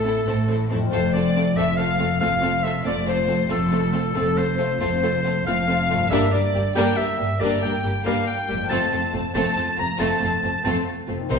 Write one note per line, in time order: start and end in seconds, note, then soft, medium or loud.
0.00 0.20 A1 medium
0.00 0.20 A2 medium
0.00 0.12 C4 medium
0.00 0.70 A4 medium
0.00 0.71 A4 medium
0.04 0.12 A3 soft
0.04 0.16 E4 medium
0.04 0.15 A4 medium
0.27 0.85 A1 medium
0.27 0.85 A2 medium
0.27 0.35 A3 medium
0.27 0.35 C4 medium
0.27 0.36 E4 medium
0.27 0.37 A4 medium
0.48 0.56 A3 soft
0.48 0.56 C4 medium
0.48 0.59 E4 medium
0.48 0.59 A4 medium
0.70 4.63 F2 medium
0.70 0.78 A3 medium
0.70 0.78 C4 medium
0.70 0.80 E4 medium
0.70 0.79 A4 medium
0.78 4.68 A3 soft
0.83 4.73 F4 soft
0.87 0.99 A3 medium
0.87 4.77 C5 soft
0.87 1.11 C5 medium
0.91 1.50 F1 medium
0.91 1.50 F2 medium
0.91 0.99 C4 medium
0.91 1.01 F4 medium
0.91 1.01 A4 medium
0.91 1.13 C5 medium
1.13 1.22 A3 soft
1.13 1.22 C4 medium
1.13 1.23 F4 medium
1.13 1.24 A4 medium
1.13 1.58 D5 medium
1.13 1.56 D5 medium
1.36 1.44 A3 medium
1.36 1.44 C4 medium
1.36 1.45 F4 soft
1.36 1.45 A4 soft
1.57 2.14 F1 medium
1.57 2.15 F2 medium
1.57 1.65 A3 medium
1.57 1.65 C4 medium
1.57 1.66 F4 medium
1.57 1.66 A4 medium
1.57 1.76 E5 loud
1.57 1.79 E5 medium
1.77 1.86 A3 medium
1.77 1.86 C4 medium
1.77 1.87 F4 medium
1.77 1.87 A4 medium
1.77 2.20 F5 medium
1.99 2.07 A3 medium
1.99 2.07 C4 medium
1.99 2.09 F4 soft
1.99 2.09 A4 medium
2.20 2.79 F1 medium
2.20 2.80 F2 medium
2.20 2.29 A3 medium
2.20 2.28 C4 medium
2.20 2.30 F4 medium
2.20 2.31 A4 medium
2.20 2.65 F5 loud
2.20 2.64 F5 medium
2.41 2.49 A3 medium
2.41 2.49 C4 medium
2.41 2.51 F4 medium
2.41 2.52 A4 medium
2.63 2.71 A3 soft
2.63 2.71 C4 soft
2.63 2.74 F4 medium
2.63 2.73 A4 medium
2.63 2.86 E5 medium
2.63 2.73 E5 medium
2.85 3.44 F1 medium
2.85 3.44 F2 medium
2.85 2.93 A3 medium
2.85 2.93 C4 medium
2.85 2.95 F4 medium
2.85 2.95 A4 medium
2.85 3.07 D5 medium
2.85 2.96 D5 medium
3.05 3.14 A3 medium
3.05 3.13 C4 medium
3.05 3.16 F4 medium
3.05 3.16 A4 soft
3.05 3.51 C5 medium
3.05 3.52 C5 medium
3.27 3.36 A3 soft
3.27 3.35 C4 soft
3.27 3.36 F4 medium
3.27 3.36 A4 medium
3.49 4.09 F1 medium
3.49 4.09 F2 medium
3.49 3.57 A3 medium
3.49 3.58 C4 medium
3.49 3.57 F4 medium
3.49 3.57 A4 medium
3.49 4.15 A4 medium
3.49 4.16 A4 medium
3.71 3.80 A3 medium
3.71 3.80 C4 medium
3.71 3.79 F4 medium
3.71 3.79 A4 medium
3.92 4.00 A3 medium
3.92 4.00 C4 medium
3.92 4.02 F4 soft
3.92 4.02 A4 medium
4.14 4.74 F1 medium
4.14 4.74 F2 medium
4.14 4.23 A3 medium
4.14 4.23 C4 medium
4.14 4.22 F4 medium
4.14 4.23 A4 medium
4.14 4.38 A4 medium
4.14 4.40 A4 medium
4.36 4.45 A3 soft
4.36 4.45 C4 soft
4.36 4.44 F4 medium
4.36 4.44 A4 medium
4.36 4.81 C5 medium
4.36 4.80 C5 medium
4.58 4.67 A3 medium
4.58 4.67 C4 medium
4.58 4.66 F4 medium
4.58 4.66 A4 soft
4.80 5.39 F1 medium
4.80 5.39 F2 medium
4.80 4.88 A3 medium
4.80 4.88 C4 medium
4.80 4.89 F4 medium
4.80 4.89 A4 medium
4.80 5.45 C5 medium
4.80 5.46 C5 medium
5.02 5.11 A3 medium
5.02 5.11 C4 medium
5.02 5.11 F4 medium
5.02 5.10 A4 medium
5.24 5.33 A3 soft
5.24 5.33 C4 soft
5.24 5.32 F4 medium
5.24 5.33 A4 medium
5.46 6.04 F1 medium
5.46 6.04 F2 medium
5.46 5.56 A3 medium
5.46 5.55 C4 medium
5.46 5.55 F4 medium
5.46 5.55 A4 medium
5.46 6.10 F5 medium
5.67 5.75 A3 medium
5.67 5.76 C4 medium
5.67 5.77 F4 medium
5.67 5.77 A4 medium
5.90 8.63 G2 medium
5.90 5.98 A3 medium
5.90 5.98 C4 soft
5.90 5.99 F4 medium
5.90 5.99 A4 medium
5.97 8.65 A#3 soft
6.02 8.67 A#4 soft
6.10 6.19 G1 medium
6.10 6.20 G2 medium
6.10 6.31 G3 medium
6.10 6.31 A#3 medium
6.10 6.31 D4 medium
6.10 6.32 A#4 medium
6.10 6.32 E5 medium
6.31 6.41 G1 medium
6.31 6.43 G2 medium
6.31 6.41 G3 medium
6.31 6.41 A#3 soft
6.31 6.41 D4 medium
6.31 6.41 A#4 soft
6.31 6.74 D5 medium
6.31 6.75 D5 medium
6.54 6.63 G1 soft
6.54 6.62 G2 medium
6.54 6.62 G3 medium
6.54 6.62 A#3 soft
6.54 6.63 A#3 soft
6.54 6.63 G4 soft
6.75 6.84 G1 medium
6.75 6.85 G2 medium
6.75 6.94 G3 medium
6.75 6.94 A#3 medium
6.75 6.97 D4 medium
6.75 6.97 A#4 medium
6.75 6.97 G5 medium
6.75 6.98 G5 medium
6.95 7.06 G1 soft
6.95 7.06 G2 soft
6.95 7.04 G3 soft
6.95 7.03 A#3 soft
6.95 7.07 D4 soft
6.95 7.42 E5 medium
6.95 7.40 E5 medium
6.99 7.07 A#4 soft
7.17 7.28 G1 soft
7.17 7.29 G2 medium
7.17 7.25 G3 soft
7.17 7.25 A#3 medium
7.17 7.29 A#3 soft
7.22 7.30 G4 soft
7.40 7.49 G1 medium
7.40 7.50 G2 medium
7.40 7.61 G3 medium
7.40 7.61 A#3 medium
7.40 7.62 D4 medium
7.40 7.62 A#4 medium
7.40 7.62 D5 medium
7.61 7.72 G1 medium
7.61 7.72 G2 soft
7.61 7.71 G3 soft
7.61 7.71 A#3 soft
7.61 7.72 D4 medium
7.61 8.04 G5 medium
7.61 8.05 G5 medium
7.65 7.73 A#4 medium
7.83 7.94 G1 soft
7.83 7.94 G2 medium
7.83 7.92 G3 soft
7.83 7.91 A#3 medium
7.83 7.94 A#3 medium
7.83 7.94 G4 medium
8.04 8.15 G1 medium
8.04 8.15 G2 medium
8.04 8.25 G3 medium
8.04 8.25 A#3 medium
8.04 8.26 D4 medium
8.04 8.26 A#4 medium
8.04 8.26 F5 medium
8.04 8.27 F5 medium
8.27 8.69 G5 medium
8.27 8.71 G5 medium
8.48 8.58 G1 medium
8.48 11.22 F2 soft
8.48 8.59 G2 soft
8.48 8.56 G3 soft
8.48 8.56 A#3 medium
8.48 8.57 A#3 soft
8.48 8.57 G4 medium
8.57 11.25 A3 soft
8.61 11.27 F4 soft
8.66 8.90 C4 medium
8.66 11.24 C5 soft
8.66 9.34 A5 medium
8.66 9.11 A5 medium
8.70 8.79 F1 medium
8.70 8.80 F2 medium
8.70 8.90 A3 medium
8.70 8.90 F4 medium
8.70 8.90 A4 medium
8.92 9.01 F1 soft
8.92 9.02 F2 soft
8.92 9.00 A3 soft
8.92 9.00 C4 soft
8.92 9.00 F4 soft
8.92 9.00 A4 medium
9.13 9.22 F1 soft
9.13 9.21 A3 soft
9.13 9.21 C4 soft
9.13 9.21 F4 soft
9.17 9.25 F2 soft
9.34 9.44 F1 medium
9.34 9.55 A3 medium
9.34 9.55 C4 medium
9.34 9.55 F4 medium
9.34 9.55 A4 medium
9.34 9.75 A5 medium
9.34 9.78 A5 medium
9.38 9.46 F2 medium
9.56 9.65 F1 soft
9.56 9.67 F2 soft
9.56 9.65 A3 soft
9.56 9.65 C4 soft
9.56 9.65 F4 soft
9.56 9.64 A4 soft
9.77 9.87 F1 soft
9.77 9.86 A3 soft
9.77 9.85 C4 soft
9.77 9.86 C4 soft
9.77 9.85 F4 soft
9.77 10.00 A#5 medium
9.77 9.99 A#5 medium
9.81 9.89 F2 soft
9.98 10.08 F1 medium
9.98 10.10 F2 medium
9.98 10.19 A3 medium
9.98 10.19 C4 medium
9.98 10.19 F4 medium
9.98 10.19 A4 medium
9.98 10.63 A5 medium
9.98 10.64 A5 medium
10.20 10.31 F1 soft
10.20 10.32 F2 soft
10.20 10.28 A3 soft
10.20 10.28 C4 medium
10.20 10.30 F4 soft
10.20 10.31 A4 soft
10.43 10.52 F1 soft
10.43 10.54 F2 soft
10.43 10.51 A3 soft
10.43 10.51 C4 soft
10.43 10.52 C4 soft
10.43 10.52 F4 soft
10.64 10.74 F1 medium
10.64 10.75 F2 medium
10.64 10.85 A3 medium
10.64 10.85 C4 medium
10.64 10.85 F4 medium
10.64 10.85 A4 medium
10.64 10.86 A5 medium
10.64 10.73 A5 medium
11.07 11.17 F1 soft
11.07 11.18 F2 soft
11.07 11.16 A3 soft
11.07 11.16 C4 soft
11.07 11.15 F4 soft
11.12 11.39 C3 soft
11.16 11.39 A#3 soft
11.21 11.39 D#4 soft
11.25 11.39 C5 soft
11.29 11.39 C2 medium
11.29 11.39 C3 medium
11.29 11.39 A#3 medium
11.29 11.39 C4 medium
11.29 11.39 D#4 medium
11.29 11.39 C5 medium